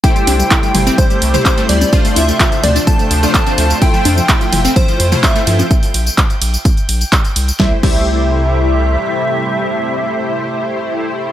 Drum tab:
CC |----------------|----------------|----------------|----------------|
RD |--x---x---x---x-|--x---x---x---x-|--x---x---x---x-|--x---x---x---x-|
HH |xxoxxxoxxxoxxxox|xooxxxoxxxoxxxox|xxoxxxoxxxoxxxox|xooxxxoxxxoxxxox|
TB |xx-xxx-xxx-xxx-x|xx-xxx-xxx-xxx-x|xx-xxx-xxx-xxx-x|xx-xxx-xxx-xxx-x|
CP |----x-------x---|----x-------x---|----x-------x---|----x-------x---|
SD |----------------|----------------|----------------|----------------|
T2 |------o----o----|------o---------|------o----o----|----------------|
CG |--o---------o--o|--o---o---------|--o---------o--o|----------------|
BD |o---o---o---o---|o---o---o---o---|o---o---o---o---|o---o---o---o---|

CC |--x-------------|----------------|
RD |----------------|----------------|
HH |----------------|----------------|
TB |----------------|----------------|
CP |----------------|----------------|
SD |o---------------|----------------|
T2 |----------------|----------------|
CG |----------------|----------------|
BD |o-o-------------|----------------|